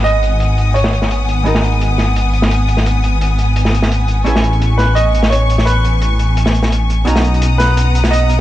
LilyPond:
<<
  \new Staff \with { instrumentName = "String section" } { \time 4/4 \key gis \minor \tempo 4 = 171 << { <fis'' dis'''>1~ | <fis'' dis'''>1~ | <fis'' dis'''>1 | cis'''1~ |
cis'''1 | <fis'' dis'''>1 | } \\ { <b gis''>1~ | <b gis''>1~ | <b gis''>1~ | <b gis''>1~ |
<b gis''>1 | <b ais''>1 | } >> }
  \new Staff \with { instrumentName = "Grand piano" } { \time 4/4 \key gis \minor dis''2 cis''4. r8 | r1 | r1 | r4. b'8 dis''4 cis''4 |
b'2 r2 | r4. b'4. dis''4 | }
  \new Staff \with { instrumentName = "Hollow-body jazz guitar" } { \time 4/4 \key gis \minor <gis b dis' fis' ais''>1 | <gis b dis' fis' ais'>1~ | <gis b dis' fis' ais'>1 | <a cis' e' gis' b'>1~ |
<a cis' e' gis' b'>1 | <b cis' dis' fis' ais''>1 | }
  \new Staff \with { instrumentName = "Detuned saw bass" } { \clef bass \time 4/4 \key gis \minor gis,,1~ | gis,,1~ | gis,,1 | a,,1~ |
a,,1 | b,,1 | }
  \new DrumStaff \with { instrumentName = "Drums" } \drummode { \time 4/4 hh8 hh8 hh8 hh8 hh16 sn16 hh16 sn16 hh8 hh8 | hh16 sn16 hh16 hh16 hh8 <hh sn>8 hh8 hh16 sn16 hh8 hh16 sn16 | hh8 hh8 hh8 hh8 hh16 sn16 hh16 sn16 hh8 hh8 | hh16 sn16 hh16 hh16 hh8 <hh sn>8 hh8 hh16 sn16 hh8 hh16 sn16 |
hh8 hh8 hh8 hh8 hh16 sn16 hh16 sn16 hh8 hh8 | hh16 sn16 hh16 hh16 hh8 <hh sn>8 hh8 hh16 sn16 hh8 hh8 | }
>>